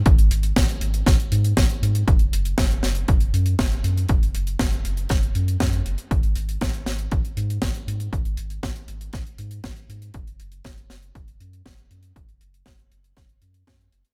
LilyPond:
<<
  \new Staff \with { instrumentName = "Analog synth bass" } { \clef bass \time 4/4 \key fis \mixolydian \tempo 4 = 119 gis,,16 gis,,16 gis,,8 gis,,8 gis,,8 gis,,8 gis,8 gis,,8 gis,8 | fis,,16 fis,,16 fis,,8 fis,,8 fis,,8 fis,,8 fis,8 fis,,8 fis,8 | fis,,16 fis,,16 fis,,8 fis,,8 fis,,8 fis,,8 fis,8 fis,8 fis,,16 r16 | gis,,16 gis,,16 gis,,8 gis,,8 gis,,8 gis,,8 gis,8 gis,,8 gis,8 |
gis,,16 gis,,16 gis,,8 gis,,8 gis,,8 gis,,8 gis,8 gis,,8 gis,8 | fis,,16 fis,,16 fis,,8 fis,,8 fis,,8 fis,,8 fis,8 fis,,8 fis,8 | fis,,16 fis,,16 fis,,8 fis,,8 fis,,8 fis,,8 fis,8 fis,8 fis,,16 r16 | }
  \new DrumStaff \with { instrumentName = "Drums" } \drummode { \time 4/4 <hh bd>16 hh16 hh16 hh16 <hh bd sn>16 hh16 hh16 hh16 <hh bd sn>16 hh16 hh16 hh16 <hh bd sn>16 hh16 hh16 hh16 | <hh bd>16 hh16 hh16 hh16 <hh bd sn>16 hh16 <hh sn>16 hh16 <hh bd>16 hh16 hh16 hh16 <hh bd sn>16 hh16 hh16 hh16 | <hh bd>16 hh16 hh16 hh16 <hh bd sn>16 hh16 hh16 hh16 <hh bd sn>16 hh16 hh16 hh16 <hh bd sn>16 hh16 hh16 hh16 | <hh bd>16 hh16 hh16 hh16 <hh bd sn>16 hh16 <hh sn>16 hh16 <hh bd>16 hh16 hh16 hh16 <hh bd sn>16 hh16 hh16 hh16 |
<hh bd>16 hh16 hh16 hh16 <hh bd sn>16 hh16 hh16 hh16 <hh bd sn>16 hh16 hh16 hh16 <hh bd sn>16 hh16 hh16 hh16 | <hh bd>16 hh16 hh16 hh16 <hh bd sn>16 hh16 <hh sn>16 hh16 <hh bd>16 hh16 hh16 hh16 <hh bd sn>16 hh16 hh16 hh16 | <hh bd>16 hh16 hh16 hh16 <hh bd sn>16 hh16 hh16 hh16 <hh bd sn>16 hh16 hh16 hh16 <hh bd sn>16 hh16 hh16 hh16 | }
>>